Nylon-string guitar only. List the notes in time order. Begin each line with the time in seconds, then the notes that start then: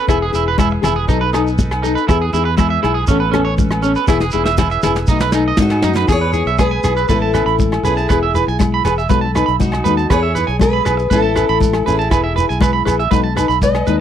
0.08 B3 E4 G#4
0.32 E4 G#4
0.82 G#4
1.07 F#3 B3 D#4 A4
1.34 B3 D#4 A4
1.84 B3 D#4 A4
2.08 B3 E4 G#4
2.34 E4 G#4
2.83 E4 G#4
3.09 E3 B3 C#4 A4
3.33 B3 C#4 A4
3.83 B3 C#4 A4
4.07 E3 B3 E4 G#4
4.34 B3 E4 G#4
4.83 B3 E4 G#4
5.10 F#3 A3 D#4
5.33 A3 D#4
5.84 A3 D#4
6.07 E3 B3 E4 G#4
6.33 B3 E4 G#4
6.84 B3 E4 G#4
7.10 E3 B3 C#4 A4
7.35 B3 C#4 A4
7.84 B3 C#4 A4
8.10 B3 E4 G#4
8.34 E4 G#4
8.85 G#4, muted nylon-string guitar stroke
9.09 F#3 B3 D#4 A4
9.35 B3 D#4 A4
9.86 B3 D#4 A4
10.10 B3 E4 G#4
10.35 E4 G#4
10.87 E4 G#4
11.11 B3 C#4 A4, muted nylon-string guitar stroke
11.37 B3 C#4 A4
11.85 B3 C#4 A4
12.10 E4, muted nylon-string guitar stroke
12.34 E4 G#4
12.86 E4 G#4
13.12 F#3 B3 D#4 A4
13.36 D#4 A4, muted nylon-string guitar stroke
13.87 B3 D#4 A4